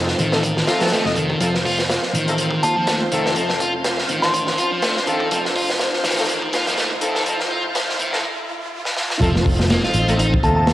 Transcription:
Already playing: F1 F3 C4 D#4 A4, riser
0.08 snare
0.19 A1 D#3, closed hi-hat
0.32 A3 C4 D#4 F4 A4, snare
0.43 kick, closed hi-hat
0.57 snare
0.67 A3 C4 D#4 F4 A4, snare, closed hi-hat
0.81 F3, snare, closed hi-hat
0.87 snare, closed hi-hat
0.92 A3, snare, closed hi-hat
1.05 F1 C4 D#4 F4 D#5, snare
1.15 D#3, kick, closed hi-hat
1.30 kick
1.40 F1 F3 A3 C4 D#4 F4 A4 C5, kick, closed hi-hat
1.54 snare
1.65 F4, kick, open hi-hat
1.78 snare
1.89 snare, closed hi-hat
2.02 snare
2.13 A1 D#3, closed hi-hat
2.28 A3 C4 D#4 F4 A4, closed hi-hat
2.38 closed hi-hat
2.51 kick
2.63 D#2 F4 A5, kick, closed hi-hat
2.76 F3 A5
2.87 A3, snare, closed hi-hat
3.11 F1 D#3 A3 C4 D#4 F4 A4, closed hi-hat
3.26 snare
3.36 F3 A3 C4 D#4 F4 A4, kick, closed hi-hat
3.49 snare
3.60 F4, kick, closed hi-hat
3.84 snare, closed hi-hat
3.98 snare
4.09 A1 D#3, closed hi-hat
4.22 A3 C4 D#4 F4 A4 C6, snare
4.34 kick, closed hi-hat
4.47 snare
4.58 F4, closed hi-hat
4.71 F3
4.82 A3, snare, closed hi-hat
4.97 snare
5.07 D#3 A3 C4 D#4 F4 A4, kick, closed hi-hat
5.20 kick
5.31 F1 F3 A3 C4 D#4 F4 A4, kick, closed hi-hat
5.45 snare
5.55 F4, kick, open hi-hat
5.70 snare
5.79 snare, closed hi-hat
5.93 snare
6.04 A1 D#3, snare, closed hi-hat
6.11 snare, closed hi-hat
6.17 A3 C4 D#4 F4 A4, snare, closed hi-hat
6.23 snare, closed hi-hat
6.28 closed hi-hat
6.42 kick
6.53 D#2 F4, snare, closed hi-hat
6.67 F3, snare, closed hi-hat
6.77 A3, snare, closed hi-hat
7.01 F1 D#3 A3 C4 D#4 F4 A4, closed hi-hat
7.15 snare
7.26 F3 A3 C4 D#4 F4 A4, kick, closed hi-hat
7.40 snare
7.51 F4
7.75 snare, closed hi-hat
7.89 snare
7.99 A1 D#3, closed hi-hat
8.13 A3 C4 D#4 F4 A4, snare
8.85 snare
8.97 snare
9.10 snare
9.20 F1 F3 A3 C4 D#4 F4 A4, kick, closed hi-hat, impact
9.35 snare
9.46 kick, open hi-hat
9.60 snare
9.70 A#3, snare, closed hi-hat
9.83 F4, snare
9.94 A1, closed hi-hat
10.08 A3 C4 D#4 F4 A4, closed hi-hat
10.19 D#4, closed hi-hat
10.34 kick
10.43 D#2 A3 C4 D#4 F4 A4 A5, kick, closed hi-hat
10.56 A5
10.67 snare, closed hi-hat

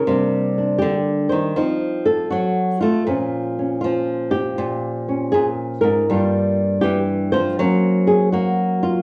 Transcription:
Already playing: A#4
0.07 C3 G3 A#3 D4
0.58 D4
0.78 D3 G4
1.29 D#3 C5
1.56 F3 C4 D#4
2.06 A4
2.30 F#3 F#4
2.81 A3 F4
3.07 A#2 F3 C#4
3.59 C#4
3.81 F3 F4
4.31 G4
4.58 A#2
5.08 C#4
5.32 A#2 G#4
5.81 G#2 A#4
6.10 G2 G3 A#3 F4
6.81 E3 G4
7.32 F3 C5
7.59 F#3 A#3 C#4
8.07 G#4
8.32 A#3 F#4
8.83 F4

